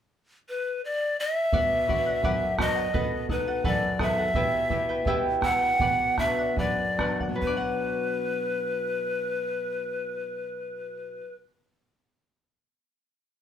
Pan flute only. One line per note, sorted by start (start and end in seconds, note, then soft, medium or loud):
0.49 0.81 B4 medium
0.85 1.17 D5 medium
1.20 2.56 E5 medium
2.61 3.27 D#5 medium
3.31 3.68 B4 medium
3.66 4.04 D5 medium
4.02 5.16 E5 medium
5.44 6.21 F#5 loud
6.19 6.60 E5 medium
6.59 7.21 D5 medium
7.42 11.34 B4 medium